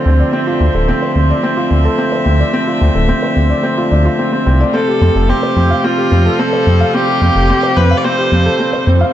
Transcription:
0.00 4.70 D3 medium
0.00 4.70 F3 medium
0.00 9.10 A3 medium
0.00 0.06 C4 medium
0.00 4.70 C4 medium
0.00 0.30 F4 medium
0.00 0.47 F4 medium
0.00 0.74 A4 medium
0.00 1.02 C5 medium
0.00 0.19 D5 medium
0.06 0.23 D2 medium
0.06 0.19 C4 medium
0.19 0.28 D5 medium
0.33 0.46 C4 medium
0.33 4.70 E5 medium
0.47 0.60 F4 medium
0.61 0.69 D2 medium
0.61 0.69 C4 medium
0.74 0.92 D1 medium
0.74 0.88 A4 medium
0.88 0.96 C4 medium
1.02 1.15 C5 medium
1.16 1.33 D2 medium
1.16 1.29 C4 medium
1.30 1.38 D5 medium
1.43 1.57 C4 medium
1.57 1.70 F4 medium
1.71 1.88 D2 medium
1.71 1.79 C4 medium
1.85 1.98 A4 medium
1.98 2.06 C4 medium
2.12 2.25 C5 medium
2.26 2.43 D2 loud
2.26 2.39 C4 medium
2.40 2.48 D5 medium
2.53 2.67 C4 medium
2.67 2.81 F4 medium
2.81 2.90 D2 medium
2.81 2.89 C4 medium
2.95 3.12 D1 medium
2.95 3.08 A4 medium
3.09 3.17 C4 medium
3.22 3.36 C5 medium
3.36 3.53 D2 medium
3.36 3.49 C4 medium
3.50 3.58 D5 medium
3.63 3.77 C4 medium
3.78 3.91 F4 medium
3.91 4.08 D2 medium
3.91 4.05 D4 medium
4.05 4.18 F4 medium
4.19 4.31 C4 medium
4.33 4.40 C4 medium
4.46 4.63 C2 medium
4.46 4.60 C4 medium
4.60 4.68 D5 medium
4.74 9.10 C3 medium
4.74 9.10 F3 medium
4.74 9.13 G3 medium
4.74 4.87 C4 medium
4.74 9.10 F4 medium
4.74 5.31 A4 medium
4.88 5.01 G4 medium
5.01 5.10 F2 loud
5.01 5.09 C4 medium
5.15 5.32 F1 medium
5.15 5.29 A4 medium
5.29 5.37 C4 medium
5.29 5.86 G4 medium
5.43 5.56 C5 medium
5.56 5.73 F2 medium
5.56 5.70 C4 medium
5.70 5.78 F5 medium
5.84 5.97 C4 medium
5.84 6.41 F4 medium
5.98 6.11 G4 medium
6.12 6.29 F2 medium
6.12 6.20 C4 medium
6.25 6.39 A4 medium
6.39 6.47 C4 medium
6.39 6.96 A4 medium
6.53 6.66 C5 medium
6.67 6.84 F2 loud
6.67 6.80 C4 medium
6.81 6.88 F5 medium
6.94 7.07 C4 medium
6.94 7.78 G4 loud
7.08 7.21 G4 medium
7.22 7.30 F2 medium
7.22 7.30 C4 medium
7.35 7.52 F1 medium
7.35 7.49 A4 medium
7.49 7.57 C4 medium
7.63 7.76 C5 medium
7.77 7.94 F2 medium
7.77 7.90 C4 medium
7.77 7.99 B4 loud
7.91 7.99 F5 medium
7.97 8.06 D5 medium
8.04 8.18 C4 medium
8.04 8.87 C5 medium
8.18 8.31 G4 medium
8.32 8.49 F2 medium
8.32 8.40 C4 medium
8.46 8.59 A4 medium
8.60 8.67 C4 medium
8.73 8.86 C5 medium
8.87 9.04 F2 loud
8.87 9.00 C4 medium
9.01 9.09 F5 medium

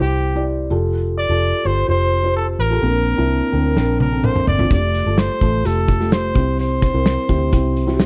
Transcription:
0.00 0.72 C2 medium
0.00 0.73 C3 soft
0.00 0.35 E4 medium
0.00 0.36 G4 medium
0.00 0.45 G4 medium
0.00 0.73 C5 medium
0.35 0.69 E4 medium
0.35 0.69 G4 medium
0.35 0.70 D5 medium
0.70 1.26 F1 medium
0.70 1.18 F4 medium
0.70 1.18 G4 medium
0.70 1.18 A4 medium
1.18 1.67 D5 medium
1.29 1.51 F1 medium
1.29 1.55 F4 medium
1.29 1.55 G4 medium
1.29 1.55 A4 medium
1.64 1.87 G1 medium
1.64 1.82 F4 medium
1.64 1.82 G4 medium
1.64 1.82 C5 medium
1.64 1.89 C5 medium
1.88 2.56 F1 medium
1.88 2.13 F4 medium
1.88 2.14 G4 medium
1.88 2.14 C5 medium
1.88 2.33 C5 medium
2.23 2.57 F4 medium
2.23 2.57 G4 medium
2.23 2.58 C5 medium
2.36 2.47 A4 medium
2.59 2.81 A1 medium
2.59 3.97 A#4 medium
2.70 2.79 F4 medium
2.70 2.79 G4 medium
2.70 2.79 A4 medium
2.82 3.15 A#1 medium
2.82 3.49 A#2 medium
2.82 3.07 C4 medium
2.82 3.08 D4 medium
2.82 3.08 A#4 medium
3.17 3.40 C2 medium
3.17 3.43 C4 medium
3.17 3.43 D4 medium
3.17 3.43 E4 medium
3.52 3.75 D2 medium
3.52 3.69 C4 medium
3.52 3.70 D4 medium
3.52 3.70 A#4 medium
3.76 4.49 A#1 medium
3.76 4.02 C4 medium
3.76 4.02 D4 medium
3.76 4.02 A#4 medium
3.76 snare soft
4.00 4.27 A#4 medium
4.00 high tom medium
4.11 4.45 C4 medium
4.11 4.45 D4 medium
4.11 4.18 A4 medium
4.18 4.49 A#4 medium
4.24 4.47 C5 medium
4.24 mid tom medium
4.36 mid tom medium
4.47 4.69 G1 medium
4.47 4.70 D5 medium
4.47 floor tom medium
4.58 4.67 C4 medium
4.58 4.67 D4 medium
4.58 4.68 F4 medium
4.58 floor tom medium
4.70 5.04 F1 medium
4.70 4.96 A3 medium
4.70 4.96 F4 medium
4.70 4.96 G4 medium
4.70 5.20 D5 medium
4.70 kick medium
4.70 closed hi-hat medium
4.94 closed hi-hat medium
5.05 5.28 G1 medium
5.05 5.31 A3 medium
5.05 5.31 F4 medium
5.05 5.31 A4 medium
5.18 5.67 C5 medium
5.18 snare medium
5.18 closed hi-hat medium
5.41 5.63 A1 medium
5.41 5.58 A3 medium
5.41 5.58 F4 medium
5.41 5.58 A4 medium
5.41 kick medium
5.41 closed hi-hat medium
5.64 6.32 F1 medium
5.64 5.90 A3 medium
5.64 5.90 F4 medium
5.64 5.90 G4 medium
5.64 6.12 A4 medium
5.64 closed hi-hat medium
5.88 kick medium
5.88 closed hi-hat medium
6.00 6.33 A3 medium
6.00 6.34 F4 medium
6.00 6.34 G4 medium
6.00 snare soft
6.12 6.56 C5 medium
6.12 snare medium
6.12 closed hi-hat medium
6.34 6.90 C2 medium
6.34 7.02 C3 soft
6.34 6.82 C4 medium
6.34 6.82 E4 medium
6.34 6.82 G4 medium
6.34 kick medium
6.34 closed hi-hat soft
6.59 8.06 C5 medium
6.59 closed hi-hat medium
6.82 kick medium
6.82 closed hi-hat medium
6.93 7.16 C2 medium
6.93 7.19 C4 medium
6.93 7.19 E4 medium
6.93 7.19 A#4 medium
7.06 snare loud
7.06 closed hi-hat medium
7.28 7.51 D2 medium
7.28 7.46 C4 medium
7.28 7.46 E4 medium
7.28 7.46 G4 medium
7.28 kick medium
7.28 closed hi-hat medium
7.52 8.06 C2 medium
7.52 7.78 C4 medium
7.52 7.78 E4 medium
7.52 7.78 G4 medium
7.52 kick medium
7.52 closed hi-hat medium
7.77 closed hi-hat medium
7.87 8.06 C4 medium
7.87 8.06 E4 medium
7.87 7.94 F#4 medium
7.87 snare soft
7.94 8.06 G4 medium
7.99 snare medium
7.99 closed hi-hat medium

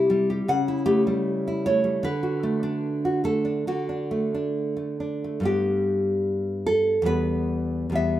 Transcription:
0.00 0.41 C3 medium
0.00 0.47 E4 soft
0.00 0.29 G4 medium
0.10 0.47 G3 soft
0.30 0.47 G4 soft
0.48 1.99 C#3 medium
0.48 0.85 F#5 medium
0.68 1.46 E4 soft
0.86 1.66 A3 medium
0.86 1.06 G4 medium
1.07 1.83 G3 medium
1.48 2.04 E4 soft
1.66 2.04 A3 soft
1.66 2.02 C#5 medium
1.84 2.03 G3 soft
2.03 3.64 D3 medium
2.03 3.21 B4 medium
2.23 3.04 F#4 soft
2.43 3.23 A3 soft
2.63 3.44 D4 soft
3.05 3.24 F#4 soft
3.24 3.67 A3 soft
3.24 3.66 A4 medium
3.45 3.67 D4 soft
3.67 5.39 D3 soft
3.67 4.52 F#4 medium
3.89 4.33 D4 soft
4.11 4.75 A3 soft
4.35 4.99 D4 soft
4.77 5.23 A3 soft
5.00 5.43 D4 soft
5.24 5.41 A3 soft
5.40 6.99 G2 soft
5.40 7.00 G3 soft
5.40 7.01 B3 soft
5.45 6.62 G4 medium
6.66 7.04 A4 medium
7.02 7.88 E2 medium
7.02 7.90 G3 soft
7.02 7.91 B3 soft
7.06 7.90 B4 medium
7.90 8.20 E2 medium
7.90 8.20 G3 soft
7.90 8.20 B3 soft
7.95 8.20 E5 medium

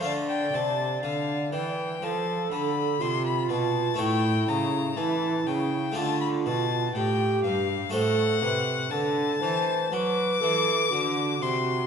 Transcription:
0.00 0.50 A3 soft
0.00 3.94 F4 soft
0.00 3.95 D5 soft
0.00 1.71 D5 medium
0.00 0.12 F5 medium
0.04 0.49 D3 soft
0.04 0.53 D3 medium
0.28 0.55 G5 medium
0.53 1.02 C3 medium
0.53 0.99 C3 soft
0.53 1.02 A5 medium
1.03 1.49 D3 soft
1.03 1.52 D3 medium
1.03 1.51 F5 medium
1.53 1.98 E3 soft
1.53 2.02 E3 medium
1.53 2.05 G5 medium
2.02 2.48 F3 soft
2.02 2.51 F3 medium
2.02 3.02 A4 medium
2.02 2.51 A5 medium
2.52 2.97 D3 soft
2.52 3.01 D3 medium
2.52 3.02 B5 medium
3.00 3.46 C3 soft
3.00 3.49 C3 medium
3.00 3.98 F4 medium
3.00 3.25 C6 medium
3.26 3.50 B5 medium
3.49 3.95 B2 soft
3.49 3.99 B2 medium
3.49 4.00 A5 medium
3.94 5.90 A3 soft
3.94 5.91 E4 soft
3.94 5.91 C#5 soft
3.98 4.44 A2 soft
3.98 4.47 A2 medium
3.98 4.95 E4 medium
3.98 4.50 G5 medium
4.48 4.94 C#3 soft
4.48 4.97 C#3 medium
4.48 4.98 A#5 medium
4.96 5.43 E3 soft
4.96 5.46 E3 medium
4.96 5.94 E4 medium
4.96 5.48 A5 medium
5.46 5.92 C#3 soft
5.46 5.96 C#3 medium
5.46 5.97 G5 medium
5.92 6.42 A3 soft
5.92 7.88 F4 soft
5.92 6.93 F4 medium
5.92 7.89 D5 soft
5.92 6.20 A5 medium
5.97 6.48 D3 medium
5.97 6.42 D3 soft
6.21 6.29 B5 medium
6.46 6.91 B2 medium
6.46 6.95 B2 medium
6.46 6.94 A5 medium
6.95 7.40 A2 soft
6.95 7.43 A2 medium
6.95 7.67 G4 medium
6.95 7.43 G5 medium
7.43 7.93 G2 medium
7.43 7.90 G2 soft
7.43 7.92 F5 medium
7.89 8.44 A2 medium
7.89 11.85 A3 soft
7.89 11.85 F#4 soft
7.89 11.86 C5 soft
7.89 8.92 F#5 loud
7.94 8.39 A2 soft
7.94 8.42 A4 medium
8.42 8.92 C3 medium
8.42 8.88 C3 soft
8.42 8.94 B4 medium
8.90 9.38 D3 soft
8.90 9.42 D3 medium
8.90 9.43 A4 medium
8.90 9.94 A5 medium
9.41 9.92 E3 medium
9.41 9.89 E3 soft
9.41 9.91 C5 medium
9.92 10.38 F#3 soft
9.92 10.42 F#3 medium
9.92 10.42 B4 medium
9.92 11.43 D6 loud
10.41 10.88 E3 soft
10.41 10.91 E3 medium
10.41 10.92 A4 medium
10.91 11.41 D3 medium
10.91 11.38 D3 soft
10.91 11.87 F#4 medium
11.42 11.87 C3 medium
11.42 11.87 C3 soft
11.42 11.87 C6 medium

